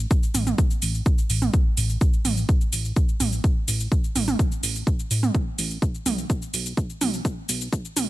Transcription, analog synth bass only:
0.35 0.54 A1 medium
0.82 1.02 A1 medium
1.30 1.50 A1 medium
1.77 1.97 A1 medium
2.25 2.45 A1 medium
2.73 2.92 A1 medium
3.20 3.40 A1 medium
3.68 3.88 A1 medium
4.15 4.35 A1 medium
4.63 4.83 A1 medium
5.11 5.30 A2 medium
5.58 5.78 A1 medium
6.06 6.26 B1 loud
6.54 6.73 B1 medium
7.01 7.21 B1 medium
7.49 7.69 B1 medium
7.96 8.09 B1 loud

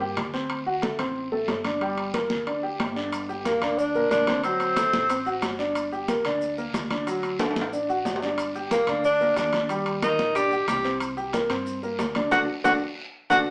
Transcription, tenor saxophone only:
0.00 0.30 A#3 medium
3.45 3.80 A#3 medium
3.78 4.10 D4 loud
4.11 4.42 D4 medium
4.44 5.55 C4 loud
8.72 9.02 A#3 medium
9.05 9.35 D4 loud
9.37 9.68 D4 medium
10.03 10.33 D#4 medium
10.35 10.66 G4 loud
10.68 10.99 G4 medium
12.32 12.40 F#4 medium
12.65 12.73 F#4 medium
13.30 13.38 F#4 loud

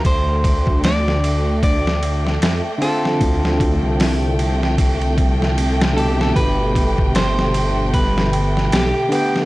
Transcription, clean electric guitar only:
0.06 0.84 C5 loud
0.85 1.59 D5 loud
1.64 2.77 D5 loud
2.82 3.95 A4 medium
5.97 6.20 A4 medium
6.21 6.35 A4 loud
6.36 7.15 B4 loud
7.16 7.94 C5 loud
7.94 8.75 B4 loud
8.73 9.45 G4 loud

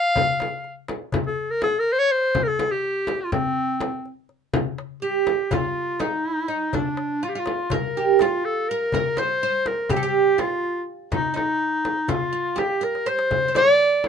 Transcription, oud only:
5.02 5.51 G4 medium
5.51 6.00 F4 medium
6.00 6.47 D#4 medium
6.48 6.74 D#4 medium
6.74 7.24 D4 medium
7.23 7.34 F4 medium
7.35 7.71 F4 medium
7.71 7.96 A#4 medium
7.97 8.21 G4 medium
8.22 8.71 F4 medium
8.71 8.93 A#4 medium
8.94 9.18 A#4 medium
9.18 9.42 C5 medium
9.43 9.90 C5 medium
9.90 9.96 G4 medium
9.96 10.02 A4 medium
10.03 10.39 G4 medium
10.38 10.81 F4 medium
11.12 11.33 D#4 medium
11.34 12.08 D#4 medium
12.09 12.31 F4 medium
12.33 12.58 F4 medium
12.56 12.81 G4 medium
12.81 13.06 A#4 medium
13.06 13.47 C5 medium
13.48 13.56 C5 medium
13.56 14.08 D5 medium

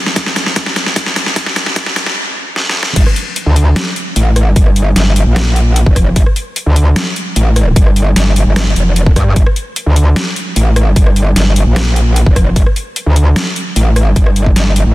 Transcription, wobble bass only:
2.96 3.05 G1 loud
3.46 3.75 D2 medium
4.16 4.55 A1 loud
4.56 4.95 G1 loud
4.96 5.25 G1 loud
5.26 5.85 A#1 loud
5.86 6.15 F1 loud
6.16 6.25 G1 loud
6.66 6.95 D2 loud
7.36 7.75 A1 medium
7.76 8.15 G1 loud
8.16 8.45 G1 medium
8.46 8.75 G1 loud
8.76 9.15 F1 loud
9.16 9.35 G2 loud
9.36 9.45 G1 loud
9.86 10.15 D2 medium
10.56 10.95 A1 loud
10.96 11.35 G1 loud
11.36 11.65 G1 loud
11.66 12.25 A#1 loud
12.26 12.55 F1 loud
12.56 12.65 G1 loud
13.06 13.35 D2 loud
13.76 14.15 A1 loud
14.16 14.55 G1 loud
14.56 14.85 G1 loud
14.86 14.94 A1 loud

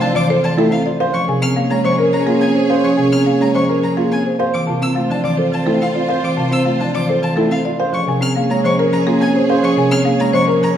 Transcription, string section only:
0.00 0.82 F4 medium
0.00 0.82 C5 medium
0.99 4.21 G#4 medium
0.99 4.21 C#5 medium
4.39 7.61 F4 medium
4.39 7.61 C5 medium
7.80 10.77 G#4 medium
7.80 10.77 C#5 medium

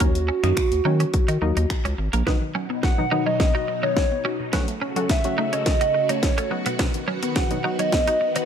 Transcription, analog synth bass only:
0.00 0.31 D#2 loud
0.44 0.53 F#2 medium
0.72 0.81 D#2 loud
0.85 1.05 D#3 loud
1.28 1.38 D#3 loud
1.42 1.52 D#2 medium
1.57 1.66 D#2 medium
1.85 1.94 C#2 medium
1.98 2.09 G#1 medium
2.13 2.23 A#1 loud

